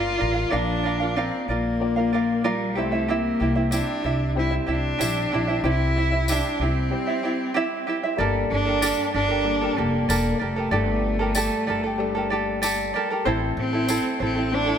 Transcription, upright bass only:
0.00 0.15 G1 medium
0.21 0.47 A1 medium
0.52 1.29 A#1 loud
1.48 2.77 A#1 medium
2.77 3.29 C2 medium
3.41 3.80 C2 medium
4.04 4.57 C2 medium
4.68 4.94 C2 medium
5.00 5.26 A#1 medium
5.33 5.59 A#1 medium
5.64 6.40 C2 loud
6.59 6.90 C2 medium
8.18 8.45 G1 loud
8.51 8.90 G1 medium
9.14 9.66 G1 medium
9.78 10.04 F1 medium
10.09 10.35 E1 loud
10.41 10.67 F1 medium
10.71 11.47 G1 loud
11.68 12.90 G1 medium
13.26 13.52 A1 loud
13.57 13.96 A1 loud
14.20 14.72 A1 medium

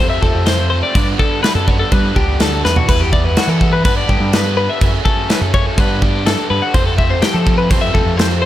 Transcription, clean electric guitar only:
0.10 0.22 E5 medium
0.22 0.46 A4 medium
0.46 0.69 C5 medium
0.70 0.82 C5 medium
0.83 1.07 D5 medium
1.19 1.42 A4 medium
1.43 1.55 B4 medium
1.55 1.68 A4 medium
1.68 1.79 C#5 medium
1.79 1.92 A4 medium
1.92 2.16 B4 medium
2.16 2.40 G4 medium
2.41 2.64 A4 medium
2.65 2.77 B4 medium
2.77 2.89 F#4 medium
2.89 3.01 B4 loud
3.00 3.12 G4 medium
3.13 3.25 D5 medium
3.25 3.37 B4 medium
3.37 3.49 F#4 medium
3.49 3.73 A4 medium
3.73 3.84 B4 medium
3.85 3.97 B4 medium
3.97 4.09 D5 medium
4.10 4.33 G4 medium
4.33 4.56 B4 medium
4.57 4.69 B4 medium
4.70 4.94 E5 medium
5.05 5.29 A4 medium
5.29 5.42 B4 medium
5.42 5.54 A4 medium
5.54 5.66 C#5 medium
5.66 5.78 A4 medium
5.78 6.02 B4 medium
6.02 6.26 G4 medium
6.26 6.50 A4 medium
6.50 6.62 B4 medium
6.62 6.74 F#4 medium
6.74 6.86 C5 loud
6.86 6.98 A4 medium
6.98 7.10 E5 medium
7.10 7.23 C5 medium
7.22 7.34 G4 medium
7.34 7.57 A4 medium
7.58 7.70 B4 medium
7.70 7.83 C5 medium
7.81 7.94 E5 medium
7.94 8.18 A4 medium
8.18 8.41 C5 medium
8.42 8.46 C5 medium

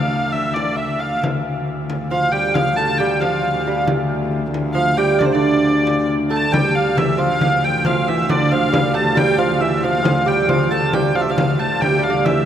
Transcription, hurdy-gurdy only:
0.00 0.32 F5 medium
0.32 0.54 E5 medium
0.54 0.77 D5 medium
0.76 0.99 E5 medium
0.99 1.21 F5 medium
2.12 2.32 F5 medium
2.32 2.54 G5 medium
2.54 2.77 F5 medium
2.76 2.98 A5 medium
2.98 3.21 G5 medium
3.20 3.83 F5 medium
4.74 4.97 F5 medium
4.97 5.20 G5 medium
5.19 5.26 D5 medium
5.25 5.33 C5 medium
5.32 6.08 D5 medium
6.30 6.52 A5 medium
6.52 6.75 G5 loud
6.75 6.97 F5 medium
6.97 7.19 E5 medium
7.19 7.64 F5 medium
7.64 7.86 G5 medium
7.86 8.08 F5 medium
8.08 8.30 E5 medium
8.30 8.52 D5 medium
8.52 8.96 F5 medium
8.94 9.17 A5 medium
9.17 9.39 G5 loud
9.39 9.61 F5 medium
9.61 9.83 E5 medium
9.83 10.28 F5 medium
10.28 10.50 G5 medium
10.49 10.71 F5 medium
10.70 10.94 A5 medium
10.94 11.16 G5 medium
11.16 11.22 F5 medium
11.21 11.31 E5 medium
11.31 11.60 F5 medium
11.59 11.81 A5 medium
11.81 12.03 G5 medium
12.03 12.25 F5 medium
12.25 12.45 E5 medium

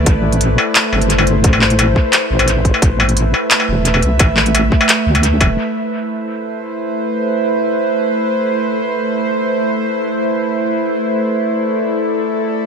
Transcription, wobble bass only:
0.06 0.57 A1 loud
0.92 1.43 G1 medium
1.44 1.95 A1 loud
2.30 2.73 A1 loud
2.82 3.33 A1 loud
3.68 4.02 E1 loud
4.03 4.19 C2 medium
4.20 4.71 A1 loud
5.06 5.42 D2 medium
5.41 5.57 E1 medium

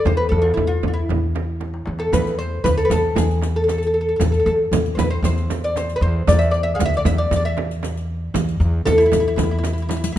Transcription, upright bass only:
0.05 0.29 E2 medium
0.32 0.56 E2 loud
0.57 0.82 E2 medium
0.84 1.08 E2 medium
1.09 1.83 E2 medium
1.87 2.11 E2 medium
2.13 2.61 E2 loud
2.64 2.89 D2 medium
2.90 3.14 E2 medium
3.16 4.16 E2 medium
4.20 4.44 E2 medium
4.46 4.70 E2 medium
4.71 4.96 E2 medium
4.97 5.22 E2 medium
5.22 5.97 E2 medium
6.01 6.26 E2 medium
6.28 6.76 E2 loud
6.79 7.04 D2 medium
7.05 7.29 E2 medium
7.31 8.31 E2 medium
8.34 8.59 E2 medium
8.60 8.85 E2 loud
8.86 9.11 E2 medium
9.12 9.37 E2 medium
9.37 10.12 E2 medium

